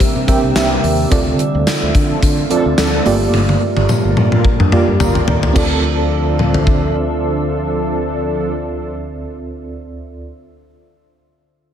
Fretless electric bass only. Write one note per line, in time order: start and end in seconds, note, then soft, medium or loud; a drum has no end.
0.00 muted fretless electric bass stroke soft
0.16 0.25 C3 medium
0.43 0.53 C2 medium
0.56 0.77 C2 medium
0.84 1.04 D#2 medium
1.12 1.32 D2 loud
1.55 1.64 D2 medium
1.82 1.92 D2 medium
1.95 2.16 D3 medium
2.23 2.43 D3 loud
2.66 2.75 D2 medium
2.78 2.99 D2 medium
3.06 3.27 G1 loud
3.34 3.54 G1 medium
3.77 3.86 G1 medium
4.05 4.14 G1 medium
4.17 4.38 G2 loud
4.44 muted fretless electric bass stroke soft
4.60 4.69 G2 medium
4.88 4.97 G2 medium
5.00 5.21 G1 medium
5.28 5.49 D#2 medium
5.56 9.24 D2 medium